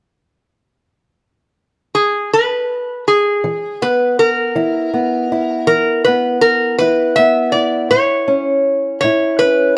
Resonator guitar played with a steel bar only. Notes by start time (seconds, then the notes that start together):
1.95 G#4
2.33 B4
3.08 G#4
3.82 B4
4.19 A#4
5.67 A#4
6.05 B4
6.41 A#4
6.79 B4
7.16 E5
7.52 D5
7.91 C#5
9.01 C#5
9.39 B4